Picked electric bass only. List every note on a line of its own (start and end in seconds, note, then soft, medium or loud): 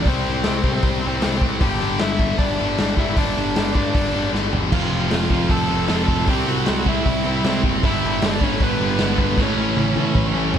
0.05 0.25 C2 medium
0.27 0.45 C2 loud
0.47 0.64 C2 loud
0.64 0.82 C2 medium
0.83 1.02 C2 medium
1.06 1.24 C2 medium
1.24 1.42 C2 medium
1.42 1.60 C2 loud
1.61 1.80 G1 loud
1.82 2.00 G1 loud
2.01 2.37 G1 loud
2.38 2.57 G1 loud
2.60 2.78 G1 medium
2.79 2.96 G1 medium
2.96 3.16 G1 medium
3.16 3.35 G1 medium
3.37 3.56 G1 medium
3.57 3.75 G1 loud
3.75 3.94 G2 medium
3.94 4.13 G1 medium
4.14 4.32 G1 medium
4.33 4.52 G1 medium
4.53 4.71 G1 loud
4.72 4.90 F1 loud
4.91 5.10 F1 medium
5.12 5.49 F1 loud
5.50 5.69 F1 loud
5.71 5.89 F1 medium
5.90 6.07 F1 medium
6.08 6.27 F1 medium
6.28 6.46 C2 loud
6.48 6.66 C2 medium
6.68 6.86 C2 medium
6.87 7.05 C2 medium
7.06 7.24 C2 loud
7.24 7.43 C2 medium
7.43 7.62 C2 medium
7.63 7.82 F#1 medium
7.83 8.02 G1 medium
8.04 8.21 G1 medium
8.22 8.59 G1 loud
8.60 8.79 G1 medium
8.80 8.99 G1 medium
9.01 9.18 G1 loud
9.18 9.37 G1 medium
9.37 9.56 A1 medium
9.57 9.76 A1 loud
9.76 9.95 A1 loud
9.97 10.14 A2 medium
10.15 10.34 A1 medium
10.35 10.54 A1 medium
10.55 10.59 A1 medium